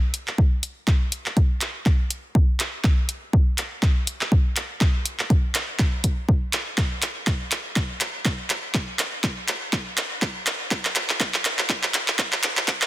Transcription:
0.14 closed hi-hat medium
0.28 clap soft
0.38 kick loud
0.63 closed hi-hat medium
0.88 kick loud
0.88 clap soft
1.12 closed hi-hat medium
1.26 clap soft
1.37 kick loud
1.37 closed hi-hat soft
1.61 clap medium
1.61 closed hi-hat medium
1.86 kick loud
1.86 clap soft
2.10 closed hi-hat medium
2.35 kick loud
2.60 clap medium
2.60 closed hi-hat medium
2.84 kick loud
2.84 clap medium
3.09 closed hi-hat medium
3.33 kick loud
3.58 clap medium
3.58 closed hi-hat medium
3.83 kick loud
3.83 clap medium
4.07 closed hi-hat medium
4.21 clap medium
4.32 kick loud
4.56 clap medium
4.56 closed hi-hat medium
4.81 kick loud
4.81 clap medium
5.06 closed hi-hat medium
5.19 clap medium
5.30 kick loud
5.30 closed hi-hat soft
5.55 clap medium
5.55 closed hi-hat medium
5.79 kick loud
5.79 clap medium
6.04 kick medium
6.04 closed hi-hat medium
6.29 kick loud
6.53 clap medium
6.53 closed hi-hat medium
6.78 kick loud
6.78 clap medium
7.02 clap medium
7.02 closed hi-hat medium
7.27 kick loud
7.27 clap medium
7.51 clap medium
7.51 closed hi-hat medium
7.76 kick loud
7.76 clap medium
8.01 clap medium
8.01 closed hi-hat medium
8.25 kick loud
8.25 clap medium
8.50 clap medium
8.50 closed hi-hat medium
8.74 kick loud
8.74 clap medium
8.99 clap medium
8.99 closed hi-hat medium
9.24 kick loud
9.24 clap medium
9.24 closed hi-hat soft
9.48 clap medium
9.48 closed hi-hat medium
9.73 kick loud
9.73 clap medium
9.97 clap medium
9.97 closed hi-hat medium
10.22 kick loud
10.22 clap medium
10.47 clap medium
10.47 closed hi-hat medium
10.71 kick loud
10.71 clap medium
10.85 clap medium
10.96 clap medium
10.96 closed hi-hat medium
11.09 clap medium
11.20 kick loud
11.20 clap medium
11.34 clap medium
11.45 clap medium
11.45 closed hi-hat medium
11.59 clap medium
11.70 kick loud
11.70 clap medium
11.83 clap medium
11.94 clap loud
11.94 closed hi-hat medium
12.08 clap medium
12.19 kick loud
12.19 clap medium
12.33 clap medium
12.43 clap loud
12.43 closed hi-hat medium
12.57 clap medium
12.68 kick loud
12.68 clap loud
12.82 clap medium

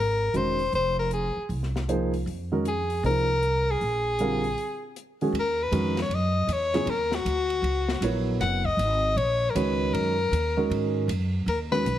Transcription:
0.00 0.31 G#1 medium
0.00 0.38 A#4 medium
0.33 0.70 E1 medium
0.33 0.57 D#3 soft
0.33 0.57 G#3 soft
0.33 0.57 C#4 soft
0.33 0.56 F#4 soft
0.33 0.57 A#4 medium
0.33 0.74 C5 medium
0.33 closed hi-hat soft
0.59 open hi-hat soft
0.72 1.32 F1 medium
0.72 0.97 C5 medium
0.72 open hi-hat soft
0.99 1.11 A#4 medium
1.11 1.48 G#4 medium
1.11 closed hi-hat soft
1.36 muted upright bass stroke soft
1.49 2.22 C2 medium
1.49 open hi-hat soft
1.63 snare soft
1.76 snare soft
1.88 2.10 F3 medium
1.88 2.11 A#3 medium
1.88 2.11 D#4 medium
1.88 2.11 G#4 medium
1.88 2.11 C5 medium
1.88 closed hi-hat soft
2.14 open hi-hat soft
2.26 2.99 F2 medium
2.26 open hi-hat soft
2.52 2.64 D#3 medium
2.52 2.64 G#3 medium
2.52 2.64 C#4 medium
2.52 2.64 F#4 medium
2.52 2.64 A#4 medium
2.65 3.02 G#4 medium
2.65 closed hi-hat soft
2.90 open hi-hat soft
3.03 3.76 C2 medium
3.03 3.26 F3 soft
3.03 3.26 A#3 soft
3.03 3.26 D#4 soft
3.03 3.27 G#4 soft
3.03 3.72 A#4 loud
3.03 3.27 C5 medium
3.03 open hi-hat soft
3.43 closed hi-hat soft
3.71 4.97 G#4 medium
3.81 4.53 A#1 medium
3.81 open hi-hat soft
4.19 4.41 D3 medium
4.19 4.42 G3 medium
4.19 4.42 C4 medium
4.19 4.42 F4 medium
4.19 4.42 A#4 medium
4.19 closed hi-hat soft
4.44 open hi-hat soft
4.58 open hi-hat soft
4.96 closed hi-hat soft
5.21 5.33 D#3 medium
5.21 5.33 G#3 medium
5.21 5.33 C#4 medium
5.21 5.33 F#4 medium
5.21 5.33 G#4 medium
5.21 open hi-hat soft
5.32 5.70 D#2 medium
5.32 ride medium
5.39 5.64 A#4 medium
5.63 5.99 B4 medium
5.71 6.08 F2 medium
5.71 5.94 D#3 medium
5.71 5.94 G#3 medium
5.71 5.94 C#4 medium
5.71 5.94 F#4 medium
5.71 5.95 A#4 medium
5.71 hi-hat pedal medium
5.71 ride medium
5.97 snare soft
5.97 ride soft
6.02 6.16 C#5 medium
6.09 6.46 F#2 medium
6.09 ride medium
6.15 6.54 D#5 medium
6.47 6.85 E2 medium
6.47 hi-hat pedal medium
6.47 ride medium
6.53 6.91 C#5 medium
6.74 6.86 C#3 medium
6.74 6.86 F#3 medium
6.74 6.86 B3 medium
6.74 6.86 E4 medium
6.74 6.86 G#4 medium
6.74 snare soft
6.74 ride soft
6.85 7.23 D#2 medium
6.85 ride medium
6.90 7.16 A#4 medium
7.12 8.28 F#4 medium
7.12 snare medium
7.25 7.61 D2 medium
7.25 hi-hat pedal soft
7.25 ride medium
7.50 ride soft
7.62 8.00 C#2 medium
7.62 ride medium
7.88 snare medium
8.01 8.38 A#1 medium
8.01 8.60 F#3 medium
8.01 8.61 B3 medium
8.01 8.60 E4 medium
8.01 8.61 A#4 medium
8.01 8.61 C#5 medium
8.01 hi-hat pedal medium
8.01 ride medium
8.40 8.76 F#1 medium
8.40 8.67 F#5 medium
8.40 snare soft
8.40 ride medium
8.65 9.18 D#5 loud
8.65 kick medium
8.77 9.15 G#1 medium
8.77 hi-hat pedal soft
8.77 ride medium
9.16 9.53 A#1 medium
9.16 9.52 C#5 medium
9.16 ride medium
9.50 9.57 A#4 medium
9.55 9.92 C#2 medium
9.55 10.13 D#3 medium
9.55 10.13 G#3 medium
9.55 10.13 C#4 medium
9.55 10.13 F#4 medium
9.55 9.95 B4 medium
9.55 10.13 C#5 medium
9.55 hi-hat pedal medium
9.55 ride medium
9.93 10.30 F#2 medium
9.93 10.70 A#4 medium
9.93 ride medium
10.31 10.68 D#2 medium
10.31 hi-hat pedal medium
10.31 ride medium
10.57 11.06 D#3 medium
10.57 11.06 G#3 medium
10.57 11.06 C#4 medium
10.57 11.06 F#4 medium
10.57 11.06 A#4 medium
10.70 11.07 G#2 medium
10.70 ride medium
11.08 11.45 F#2 medium
11.08 hi-hat pedal medium
11.08 ride medium
11.46 11.83 D#2 medium
11.46 11.59 A#4 medium
11.46 ride medium
11.71 11.83 D#3 medium
11.71 11.83 G#3 medium
11.71 11.83 C#4 medium
11.71 11.84 F#4 medium
11.71 11.99 B4 medium
11.71 11.84 B4 medium
11.71 snare soft
11.85 11.99 B1 medium
11.85 hi-hat pedal medium
11.85 ride medium

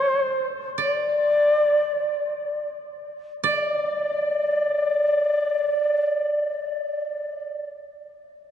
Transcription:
0.00 0.43 A4 medium
0.00 0.46 C5 medium
0.00 1.44 C5 medium
0.00 0.30 D5 soft
0.78 2.64 D5 medium
0.78 2.65 D5 medium
3.44 7.70 D5 medium

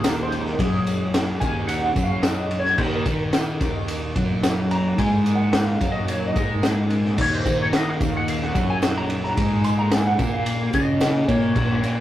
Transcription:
0.00 2.77 A#1 medium
0.00 0.55 D#2 medium
0.00 2.85 F2 medium
0.00 0.58 D#3 loud
0.00 2.74 G#3 medium
0.00 2.75 C#4 medium
0.00 2.74 G#4 medium
0.00 tambourine loud
0.04 0.23 A#4 medium
0.04 snare loud
0.04 ride loud
0.23 0.41 C5 medium
0.32 ride medium
0.32 tambourine soft
0.41 0.59 A#4 medium
0.46 snare soft
0.58 1.37 F#2 medium
0.58 1.40 F#3 loud
0.58 1.10 G#4 medium
0.58 kick loud
0.58 ride medium
0.58 tambourine soft
0.87 ride medium
0.87 tambourine medium
1.14 snare loud
1.14 ride loud
1.14 tambourine medium
1.40 1.93 D#2 medium
1.40 1.95 D#3 loud
1.40 1.67 G#5 loud
1.40 kick loud
1.40 ride medium
1.40 tambourine medium
1.67 2.06 F#5 medium
1.67 ride medium
1.67 tambourine medium
1.96 2.75 F#2 medium
1.96 2.78 F#3 loud
1.96 kick loud
1.96 ride medium
1.96 tambourine medium
2.03 2.22 F5 medium
2.22 2.59 D#5 medium
2.22 snare loud
2.22 ride medium
2.22 tambourine loud
2.51 ride medium
2.51 tambourine soft
2.60 2.79 C#5 medium
2.65 snare soft
2.78 11.56 A#1 medium
2.78 3.04 D#2 medium
2.78 3.05 D#3 loud
2.78 12.00 A#3 medium
2.78 11.53 D#4 medium
2.78 7.15 A#4 medium
2.78 2.83 C5 medium
2.78 kick loud
2.78 crash loud
2.96 3.24 A#4 medium
3.06 3.57 D#3 medium
3.06 3.60 D#4 loud
3.06 kick loud
3.06 ride medium
3.06 tambourine medium
3.33 snare loud
3.33 ride medium
3.33 tambourine medium
3.61 4.12 D#2 medium
3.61 4.15 D#3 loud
3.61 kick loud
3.61 snare soft
3.61 ride medium
3.61 tambourine medium
3.88 ride medium
3.88 tambourine medium
4.16 4.94 F#2 medium
4.16 4.98 F#3 loud
4.16 kick loud
4.16 ride medium
4.43 snare loud
4.43 ride loud
4.43 tambourine loud
4.71 5.00 A#5 loud
4.71 ride medium
4.71 tambourine soft
4.98 5.77 G#2 medium
4.98 5.80 G#3 loud
4.98 5.33 G#5 loud
4.98 kick medium
4.98 ride loud
5.26 ride medium
5.26 tambourine medium
5.35 5.55 F#5 medium
5.53 5.91 F5 medium
5.53 snare loud
5.53 ride loud
5.53 tambourine medium
5.81 6.32 F#2 medium
5.81 6.35 F#3 loud
5.81 kick loud
5.81 ride medium
5.81 tambourine medium
5.92 6.10 D#5 medium
6.08 6.27 C#5 medium
6.08 ride medium
6.08 tambourine medium
6.27 6.53 D#5 medium
6.36 7.14 G#2 medium
6.36 7.18 G#3 loud
6.36 kick loud
6.36 ride medium
6.36 tambourine medium
6.63 snare loud
6.63 ride medium
6.63 tambourine loud
6.90 ride medium
6.90 tambourine soft
7.05 snare soft
7.18 7.44 D#2 loud
7.18 7.45 D#3 loud
7.18 11.52 G#4 medium
7.18 7.33 C#5 medium
7.18 kick loud
7.18 crash loud
7.35 7.62 C5 medium
7.45 7.96 D#3 medium
7.45 8.00 D#4 loud
7.45 kick loud
7.45 ride medium
7.45 tambourine medium
7.62 7.67 C#5 medium
7.73 7.90 D#5 medium
7.73 snare loud
7.73 ride medium
7.73 tambourine medium
7.90 8.16 F5 medium
8.00 8.51 D#2 medium
8.00 8.55 D#3 loud
8.00 kick loud
8.00 ride medium
8.00 tambourine medium
8.17 8.28 F#5 medium
8.28 8.43 F5 medium
8.28 ride loud
8.28 tambourine medium
8.42 8.71 F#5 medium
8.42 snare soft
8.55 9.33 F#2 medium
8.55 9.37 F#3 medium
8.55 kick loud
8.55 ride medium
8.55 tambourine medium
8.70 8.77 G#5 loud
8.82 snare loud
8.82 ride loud
8.82 tambourine loud
8.98 9.05 A#5 loud
9.09 ride medium
9.09 tambourine soft
9.24 9.64 A#5 medium
9.24 snare soft
9.37 10.15 G#2 loud
9.37 10.19 G#3 loud
9.37 kick loud
9.37 ride loud
9.37 tambourine soft
9.64 9.70 C6 loud
9.64 ride medium
9.64 tambourine medium
9.79 9.93 A#5 loud
9.91 10.07 G#5 medium
9.91 snare loud
9.91 ride loud
9.91 tambourine medium
10.06 10.33 F#5 medium
10.19 10.70 A#2 medium
10.19 10.73 A#3 loud
10.19 kick loud
10.19 ride medium
10.19 tambourine medium
10.33 10.74 F5 medium
10.46 ride medium
10.46 tambourine medium
10.73 11.25 C#3 medium
10.73 11.28 C#4 medium
10.73 11.31 D#5 medium
10.73 kick loud
10.73 ride medium
10.73 tambourine medium
11.01 snare loud
11.01 ride medium
11.01 tambourine loud
11.28 11.54 A#2 medium
11.28 11.55 A#3 loud
11.28 12.00 C#5 medium
11.28 kick medium
11.28 ride medium
11.28 tambourine soft
11.55 11.81 A#1 medium
11.55 12.00 A#1 medium
11.55 11.82 A#2 loud
11.55 12.00 C#4 medium
11.55 12.00 F4 medium
11.55 kick loud
11.55 crash medium
11.83 12.00 A#2 medium
11.83 12.00 A#3 loud
11.83 ride medium
11.83 tambourine medium

